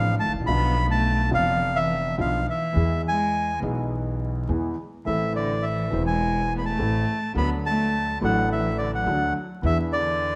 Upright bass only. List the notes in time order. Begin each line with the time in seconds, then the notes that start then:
Already playing: A1
0.26 G#1
0.33 A1
0.40 A#1
0.48 B1
1.33 F1
2.19 B1
2.76 E2
3.63 B1
4.49 E2
5.07 A1
5.93 E1
6.80 A1
7.35 D2
8.22 A1
9.06 D2
9.63 E2